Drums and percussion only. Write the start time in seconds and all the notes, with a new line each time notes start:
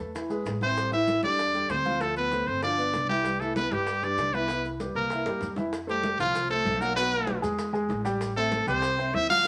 0.00 high bongo
0.15 high bongo, high conga, maracas
0.30 high conga, maracas
0.46 high bongo, low bongo, high conga, maracas
0.61 high bongo, high conga, maracas
0.77 high bongo, maracas
0.92 high conga, maracas
1.08 high bongo, high conga, maracas
1.23 high conga, maracas
1.39 high bongo, high conga, maracas
1.54 high conga, maracas
1.69 high bongo, low bongo, high conga, maracas
1.85 high conga, maracas
2.01 high bongo, high conga, maracas
2.16 high bongo, high conga, maracas
2.32 high bongo, high conga, maracas
2.46 high bongo, high conga, maracas
2.62 high bongo, high conga, maracas
2.78 high conga, maracas
2.94 high bongo, low bongo, high conga, maracas
3.09 high bongo, high conga, maracas
3.25 high bongo, maracas
3.40 high conga, maracas
3.56 high bongo, high conga, maracas
3.71 high conga, maracas
3.87 high bongo, high conga, maracas
4.03 high conga, maracas
4.18 high bongo, low bongo, high conga, maracas
4.33 high conga, maracas
4.48 high bongo, high conga, maracas
4.64 high bongo, high conga, maracas
4.80 high bongo, high conga, maracas
4.95 high bongo, high conga, maracas
5.10 high bongo, high conga, maracas
5.26 high bongo, high conga, maracas
5.41 low bongo, high conga, maracas
5.56 low bongo, high conga, maracas
5.72 high bongo, high conga, maracas
5.88 high conga, maracas
6.03 high bongo, high conga, maracas
6.19 high bongo, high conga, low conga, maracas
6.34 high bongo, high conga, low conga, maracas
6.50 high bongo, high conga, maracas
6.65 high bongo, low bongo, high conga, maracas
6.81 high bongo, maracas
6.96 high bongo, high conga, maracas
7.12 high conga, maracas
7.27 high bongo, high conga, maracas
7.43 high bongo, high conga, maracas
7.58 high bongo, high conga, maracas
7.74 high bongo, high conga, maracas
7.89 high bongo, low bongo, high conga, maracas
8.05 high bongo, maracas
8.20 high bongo, high conga, maracas
8.36 high conga, maracas
8.52 high bongo, high conga, maracas
8.67 high bongo, high conga, low conga, maracas
8.82 high bongo, high conga, maracas
8.97 high bongo, high conga, maracas
9.13 high bongo, low bongo, high conga, maracas
9.29 high bongo, high conga, maracas